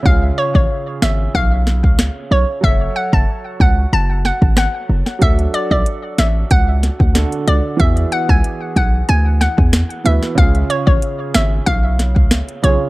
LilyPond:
<<
  \new Staff \with { instrumentName = "Synth pluck" } { \time 4/4 \key cis \phrygian \tempo 4 = 93 eis''16 r16 cis''16 cis''8 r16 e''8 eis''8. r8. cis''16 r16 | e''16 r16 fis''16 a''8 r16 fis''8 a''16 r16 fis''16 r16 fis''8. r16 | e''16 r16 d''16 d''8 r16 e''8 fis''8. r8. d''16 r16 | e''16 r16 fis''16 gis''8 r16 fis''8 gis''16 r16 fis''16 r8. e''16 r16 |
eis''16 r16 cis''16 cis''8 r16 e''8 eis''8. r8. cis''16 r16 | }
  \new Staff \with { instrumentName = "Grand piano" } { \time 4/4 \key cis \phrygian <cis cis' eis' gis'>1 | <fis fis' a' cis''>1 | <fis d' fis' a'>2. <d d' fis' a'>4 | <e b fis' gis'>2.~ <e b fis' gis'>8 <e b fis' b'>8 |
<cis cis' eis' gis'>2.~ <cis cis' eis' gis'>8 <cis cis' eis' gis'>8 | }
  \new Staff \with { instrumentName = "808-style bass" } { \clef bass \time 4/4 \key cis \phrygian cis,8 r16 a,,16 r8 gis,,8 b,,8. cis,8 r16 b,,16 r16 | fis,,8 r16 fis,,16 r8 cis,8 fis,,8. gis,,8 r16 fis,,16 r16 | d,8 r16 b,,16 r8 a,,8 cis,8. d,8 r16 cis,16 r16 | e,8 r16 cis,16 r8 b,,8 d,8. e,8 r16 d,16 r16 |
cis,8 r16 a,,16 r8 gis,,8 b,,8. cis,8 r16 b,,16 r16 | }
  \new DrumStaff \with { instrumentName = "Drums" } \drummode { \time 4/4 bd8. bd16 r8 sn8 bd8 sn16 bd16 sn4 | bd8. bd16 r8 bd8 r8 sn16 bd16 <ss sn>8. sn16 | <hh bd>16 hh16 hh16 bd16 hh8 <hh sn>8 <hh bd>8 <hh sn>16 bd16 <hh sn>16 hh16 hh8 | <hh bd>16 hh16 hh16 bd16 hh8 <hh bd>8 hh8 <hh sn>16 bd16 <hh sn>16 hh16 hh16 sn16 |
<hh bd>16 hh16 hh16 bd16 hh8 <hh sn>8 <hh bd>8 <hh sn>16 bd16 <hh sn>16 hh16 hh8 | }
>>